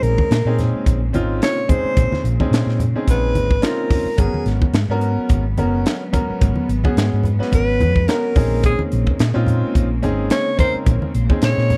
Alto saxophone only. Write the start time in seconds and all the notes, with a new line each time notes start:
0.03 A#4
1.43 C#5
1.70 C5
3.10 B4
3.65 A#4
4.19 G#4
7.55 B4
8.08 A#4
8.66 G#4
10.32 C#5
10.60 C5
11.45 C#5